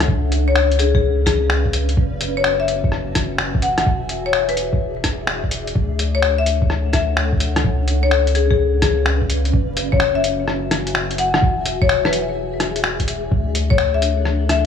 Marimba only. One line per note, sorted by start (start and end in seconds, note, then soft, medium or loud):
0.48 0.72 C#5 medium
0.79 0.89 G#4 medium
0.95 1.00 G#4 medium
1.26 1.94 G#4 medium
2.37 2.57 C#5 medium
2.60 2.84 E5 medium
3.63 3.73 F#5 medium
3.78 3.84 F#5 medium
4.26 4.46 C#5 medium
4.49 4.96 B4 medium
6.15 6.35 C#5 medium
6.38 6.63 E5 medium
6.93 7.18 E5 medium
8.03 8.28 C#5 medium
8.35 8.45 G#4 medium
8.51 8.56 G#4 medium
8.82 9.50 G#4 medium
9.92 10.13 C#5 medium
10.15 10.40 E5 medium
11.19 11.29 F#5 medium
11.35 11.40 F#5 medium
11.82 12.02 C#5 medium
12.06 12.53 B4 medium
13.70 13.91 C#5 medium
13.94 14.19 E5 medium
14.50 14.66 E5 medium